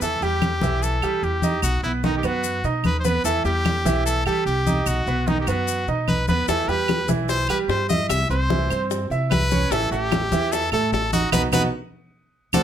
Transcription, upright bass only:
0.01 0.20 E2 medium
0.21 0.60 E2 medium
0.61 1.00 B1 medium
1.02 1.22 E3 medium
1.23 1.61 E2 medium
1.63 1.82 B1 medium
1.83 2.21 B1 medium
2.23 2.62 F#2 medium
2.64 2.83 B2 medium
2.83 3.22 D#2 medium
3.24 3.44 E2 medium
3.44 3.83 E2 medium
3.85 4.24 B1 medium
4.26 4.45 E3 medium
4.46 4.84 C2 medium
4.86 5.06 B1 medium
5.06 5.45 B1 medium
5.47 5.86 F#2 medium
5.88 6.07 B2 medium
6.08 6.26 B1 medium
6.28 6.46 D#2 medium
6.48 6.67 E2 medium
6.68 7.07 E2 medium
7.08 7.47 B1 medium
7.48 7.68 E3 medium
7.68 8.07 G2 medium
8.09 8.29 C2 medium
8.30 8.68 C2 medium
8.70 9.09 G2 medium
9.10 9.30 C3 medium
9.31 9.69 C2 medium
9.71 9.90 A1 medium
9.91 10.30 A1 medium
10.32 10.70 E2 medium
10.72 10.91 A2 medium
10.92 11.30 A1 medium
11.32 11.47 B1 medium
11.52 11.67 B1 medium
12.53 12.63 D2 medium

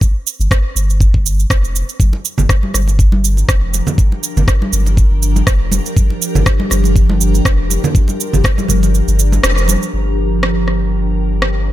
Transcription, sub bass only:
0.01 0.11 G1 loud
0.40 0.48 G1 medium
0.75 1.08 G1 loud
1.14 1.45 G1 loud
1.50 1.83 F1 medium
2.00 2.10 G1 loud
2.38 2.46 G1 medium
2.74 3.07 G1 medium
3.12 3.44 G1 loud
3.49 3.81 F1 medium
3.98 4.08 G1 loud
4.37 4.45 G1 medium
4.72 5.05 G1 medium
5.11 5.42 G1 medium
5.47 5.79 F1 medium
5.97 6.07 G1 loud
6.35 6.43 G1 medium
6.71 7.03 G1 medium
7.09 7.40 G1 loud
7.45 7.78 F1 medium
7.95 8.05 G1 loud
8.33 8.41 G1 medium
8.69 9.02 G1 medium
9.08 9.39 G1 loud
9.44 9.76 F1 medium
9.93 11.73 G1 medium

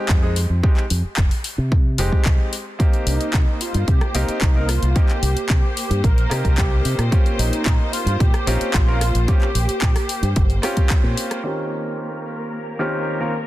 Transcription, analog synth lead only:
3.07 3.63 D#4 medium
3.61 3.90 F4 medium
3.88 4.16 G4 medium
4.15 4.71 D#4 medium
4.69 4.97 F4 medium
4.96 5.49 G4 loud
5.50 6.05 G4 loud
6.04 6.59 A#4 loud
6.58 6.98 G4 medium
7.39 7.94 D#4 loud
7.93 8.21 F4 loud
8.20 8.47 G4 loud
8.47 8.59 D#4 medium
8.74 9.30 F4 loud
9.28 10.90 G4 loud

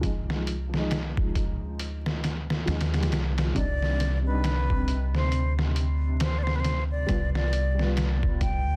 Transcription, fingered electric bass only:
0.03 1.62 C2 medium
1.62 2.67 D2 loud
2.68 3.12 D#2 medium
3.12 3.52 C2 medium
3.56 5.14 C2 medium
5.14 7.05 D2 loud
7.09 8.67 C2 medium
8.67 8.76 D2 loud

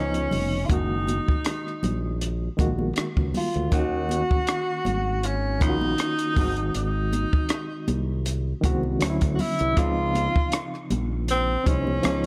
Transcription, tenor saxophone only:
0.00 0.66 C#4 loud
0.65 0.74 F4 medium
0.73 2.22 D#4 medium
3.37 3.76 F4 medium
3.74 5.27 F#4 loud
5.25 5.64 C#4 medium
5.62 6.75 D#4 loud
6.76 8.23 D#4 medium
9.35 9.42 F#4 medium
9.40 9.81 E4 medium
9.79 10.92 F4 loud
11.31 11.69 C4 loud
11.67 12.26 C#4 loud

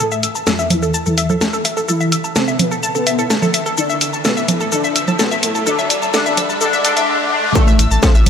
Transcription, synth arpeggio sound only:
0.12 0.20 E5 medium
0.23 0.35 E6 medium
0.35 0.44 A5 medium
0.47 0.56 A4 medium
0.59 0.68 E5 medium
0.82 0.93 A4 loud
0.94 1.03 A5 loud
1.06 1.11 A4 medium
1.18 1.29 E5 loud
1.30 1.41 A4 loud
1.41 1.47 A5 medium
1.53 1.59 A4 loud
1.65 1.74 E5 medium
1.77 1.87 A4 loud
1.88 1.98 A4 loud
2.01 2.09 E5 loud
2.12 2.24 E6 medium
2.24 2.33 A5 medium
2.36 2.45 A4 medium
2.48 2.57 E5 loud
2.71 2.82 A4 loud
2.83 2.92 A5 loud
2.95 3.00 A4 medium
3.07 3.18 E5 loud
3.19 3.30 A4 loud
3.30 3.36 A5 medium
3.42 3.48 A4 loud
3.54 3.63 E5 medium
3.66 3.76 A4 loud
3.77 3.87 A4 medium
3.90 3.98 E5 medium
4.01 4.13 E6 medium
4.13 4.22 A5 medium
4.25 4.34 A4 medium
4.37 4.46 E5 medium
4.61 4.70 A4 medium
4.72 4.81 A4 medium
4.84 4.93 E5 medium
4.96 5.07 E6 medium
5.08 5.17 A5 medium
5.19 5.29 A4 medium
5.31 5.40 E5 medium
5.55 5.65 A4 medium
5.66 5.76 A4 loud
5.79 5.87 E5 loud
5.90 6.02 E6 medium
6.02 6.11 A5 medium
6.14 6.23 A4 loud
6.26 6.35 E5 loud
6.37 6.49 E6 medium
6.49 6.58 A5 medium
6.61 6.70 A4 loud
6.73 6.82 E5 loud
6.85 6.94 A4 loud
6.97 7.06 E5 loud
7.55 7.65 A4 loud
7.55 7.65 A5 medium
7.68 7.76 E5 loud
7.68 7.76 E6 medium
7.79 7.91 E6 medium
7.91 8.00 A5 medium
7.91 8.00 A6 medium
8.03 8.12 A4 medium
8.03 8.12 A5 medium
8.15 8.24 E5 loud
8.15 8.24 E6 medium

